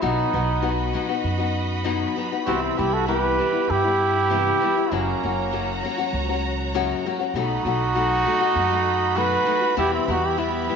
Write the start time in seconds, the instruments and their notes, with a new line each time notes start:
0.01 upright bass B1, nylon-string guitar B2 F#3 B3 D#4 F#4, trumpet B3 D#4, violin section F#4 D#5 B5
0.33 upright bass B1, nylon-string guitar F#3 B3 D#4 F#4
0.62 nylon-string guitar B2 F#3 B3 D#4 F#4
0.93 nylon-string guitar F#3 B3 D#4 F#4
1.09 nylon-string guitar B3 D#4 F#4
1.24 upright bass F#2
1.39 nylon-string guitar B3 D#4 F#4
1.84 nylon-string guitar B2 F#3 B3 D#4 F#4
2.16 nylon-string guitar F#3 B3 D#4 F#4
2.31 nylon-string guitar B3 D#4 F#4
2.45 upright bass C2, nylon-string guitar C3 E3 G3 B3 E4, trumpet C4 F#4, violin section E4 B4
2.62 trumpet C4 E4
2.77 upright bass C2, nylon-string guitar E3 G3 B3 E4, trumpet E4 G4
2.93 trumpet F#4 A4
3.07 nylon-string guitar C3 E3 G3 B3 E4, trumpet G4 B4
3.39 nylon-string guitar E3 G3 B3 E4
3.53 nylon-string guitar G3 B3 E4
3.69 upright bass G2, trumpet E4 G4
3.84 nylon-string guitar G3 B3 E4
4.30 nylon-string guitar C3 E3 G3 B3 E4
4.61 nylon-string guitar E3 G3 B3 E4
4.76 nylon-string guitar G3 B3 E4
4.90 upright bass F#1, nylon-string guitar F#2 C#3 F#3 A#3 C#4 F#4, trumpet A#3 C#4, violin section F#4 C#5 A#5
5.23 upright bass F#1, nylon-string guitar F#3 A#3 C#4 F#4
5.52 nylon-string guitar F#2 C#3 F#3 A#3 C#4 F#4
5.83 nylon-string guitar F#3 A#3 C#4 F#4
5.98 nylon-string guitar F#3 A#3 C#4 F#4
6.13 upright bass C#2
6.29 nylon-string guitar F#3 A#3 C#4 F#4
6.74 nylon-string guitar F#2 C#3 F#3 A#3 C#4 F#4
7.06 nylon-string guitar F#3 A#3 C#4 F#4
7.19 nylon-string guitar F#3 A#3 C#4 F#4
7.34 upright bass B1, nylon-string guitar B2 F#3 A3 D#4 F#4, trumpet D#4 F#4, violin section A4 D#5 B5
7.65 upright bass B1, nylon-string guitar F#3 A3 D#4 F#4
7.95 nylon-string guitar B2 F#3 A3 D#4 F#4
8.25 nylon-string guitar F#3 A3 D#4 F#4
8.41 nylon-string guitar A3 D#4 F#4
8.56 upright bass F#2
8.70 nylon-string guitar A3 D#4 F#4
9.15 nylon-string guitar B2 F#3 A3 D#4 F#4, trumpet F#4 B4
9.45 nylon-string guitar F#3 A3 D#4 F#4
9.61 nylon-string guitar A3 D#4 F#4
9.75 nylon-string guitar E2 B2 E3 G3 B3 E4, upright bass E2, trumpet E4 G4, violin section G4 E5
9.93 trumpet C4 E4
10.07 upright bass E2, nylon-string guitar E3 G3 B3 E4, trumpet D#4 F#4
10.23 trumpet E4 G4
10.37 nylon-string guitar E2 B2 E3 G3 B3 E4, trumpet B3 E4
10.68 nylon-string guitar E3 G3 B3 E4